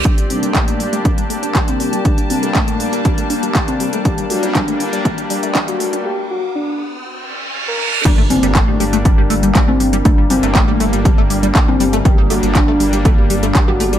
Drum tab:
CC |----------------|----------------|----------------|----------------|
HH |xxoxxxoxxxoxxxox|xxoxxxoxxxoxxxox|xxoxxxoxxxoxxxox|----------------|
CP |----x-------x---|----x-------x---|----x-------x---|----------------|
BD |o---o---o---o---|o---o---o---o---|o---o---o---o---|----------------|

CC |x---------------|----------------|----------------|
HH |x-oxx-oxx-oxx-ox|x-oxx-oxx-oxx-ox|x-oxx-oxx-oxx-ox|
CP |----x-------x---|----x-------x---|----x-------x---|
BD |o---o---o---o---|o---o---o---o---|o---o---o---o---|